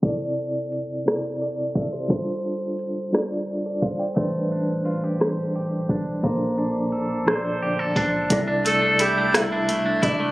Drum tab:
HH |x-xx-x|x-xx-x|x-xx-x|x-xx-x|
SD |---r--|---r--|---r--|---r--|
BD |o----o|o----o|o----o|o----o|

HH |xxxxxx|
SD |---r--|
BD |o----o|